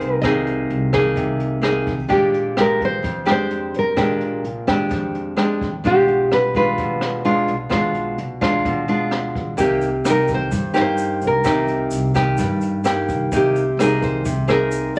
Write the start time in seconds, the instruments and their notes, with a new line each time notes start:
Already playing: nylon-string guitar C3 A#3 D#4 G#4 C5
0.00 upright bass C2, closed hi-hat
0.21 upright bass C2, nylon-string guitar C3 A#3 D#4 G#4 D#5, kick, cross-stick, closed hi-hat
0.47 closed hi-hat
0.70 upright bass C2, closed hi-hat
0.93 nylon-string guitar A#3 D#4 G#4, kick, cross-stick, closed hi-hat
1.16 upright bass C2, nylon-string guitar C3, kick, closed hi-hat
1.40 closed hi-hat
1.61 nylon-string guitar A#3 D#4 G#4, cross-stick, closed hi-hat
1.87 upright bass C2, kick, closed hi-hat
2.08 upright bass A#1, nylon-string guitar A#2 G#3 D4 G4, kick, closed hi-hat
2.34 closed hi-hat
2.57 upright bass A#1, nylon-string guitar G#3 D4 G4 A#4, cross-stick, closed hi-hat
2.81 kick, closed hi-hat
2.85 nylon-string guitar C5
3.03 nylon-string guitar F2, upright bass F2, kick, closed hi-hat
3.25 nylon-string guitar G#3 D4 G4, cross-stick, closed hi-hat
3.31 nylon-string guitar C5
3.50 closed hi-hat
3.74 upright bass A#1, closed hi-hat
3.79 nylon-string guitar A#4
3.96 upright bass A#1, nylon-string guitar A#2 G#3 D4 G4, kick, cross-stick, closed hi-hat
4.21 closed hi-hat
4.44 upright bass A#1, closed hi-hat
4.67 nylon-string guitar G#3 D4 G4, kick, cross-stick, closed hi-hat
4.90 nylon-string guitar F2, upright bass F2, kick, closed hi-hat
5.15 closed hi-hat
5.37 nylon-string guitar G#3 D4 G4, cross-stick, closed hi-hat
5.61 upright bass A#1, kick, closed hi-hat
5.84 upright bass B1, nylon-string guitar B2 G#3 D4 F4 G4, kick, closed hi-hat
6.08 closed hi-hat
6.31 upright bass B1, nylon-string guitar B4, cross-stick, closed hi-hat
6.54 nylon-string guitar G#3 D4 F4 B4, kick, closed hi-hat
6.78 upright bass D2, nylon-string guitar B2, kick, closed hi-hat
7.01 cross-stick, closed hi-hat
7.25 nylon-string guitar G#3 D4 F4, closed hi-hat
7.48 upright bass B1, closed hi-hat
7.69 upright bass B1, nylon-string guitar B2 G#3 D4 F4, kick, cross-stick, closed hi-hat
7.94 closed hi-hat
8.18 upright bass B1, closed hi-hat
8.41 nylon-string guitar G#3 D4 F4, kick, cross-stick, closed hi-hat
8.65 upright bass D2, nylon-string guitar B2, kick, closed hi-hat
8.88 nylon-string guitar G#3 D4 F4, closed hi-hat
9.11 cross-stick, closed hi-hat
9.35 upright bass B1, kick, closed hi-hat
9.57 upright bass C2, nylon-string guitar C3 A#3 D#4 G4, kick, closed hi-hat, shaker
9.81 closed hi-hat, shaker
10.04 upright bass C2, nylon-string guitar A#3 D#4 G4, cross-stick, closed hi-hat, shaker
10.10 nylon-string guitar A#4
10.28 kick, closed hi-hat, shaker
10.34 nylon-string guitar C5
10.51 nylon-string guitar G2, upright bass G2, kick, closed hi-hat, shaker
10.74 nylon-string guitar A#3 D#4 G4, cross-stick, closed hi-hat, shaker
10.81 nylon-string guitar C5
10.98 closed hi-hat, shaker
11.22 upright bass C2, closed hi-hat, shaker
11.27 nylon-string guitar A#4
11.44 upright bass C2, nylon-string guitar C3 A#3 D#4 G4, kick, cross-stick, closed hi-hat, shaker
11.68 closed hi-hat, shaker
11.91 upright bass C2, closed hi-hat, shaker
12.14 nylon-string guitar A#3 D#4 G4, kick, cross-stick, closed hi-hat, shaker
12.38 nylon-string guitar G2, upright bass G2, kick, closed hi-hat, shaker
12.61 closed hi-hat, shaker
12.84 nylon-string guitar A#3 D#4 G4, cross-stick, closed hi-hat, shaker
13.09 upright bass C2, kick, closed hi-hat, shaker
13.32 upright bass C2, nylon-string guitar C3 A#3 D#4, kick, closed hi-hat, shaker
13.37 nylon-string guitar G4
13.55 closed hi-hat, shaker
13.77 upright bass C2, nylon-string guitar A#3 D#4 G#4, cross-stick, closed hi-hat, shaker
13.82 nylon-string guitar A#4
14.02 nylon-string guitar C5, kick, closed hi-hat, shaker
14.25 upright bass C2, nylon-string guitar C3, kick, closed hi-hat, shaker
14.48 nylon-string guitar A#3 D#4 G#4 A#4, cross-stick, closed hi-hat, shaker
14.71 closed hi-hat, shaker
14.95 upright bass C2, closed hi-hat, shaker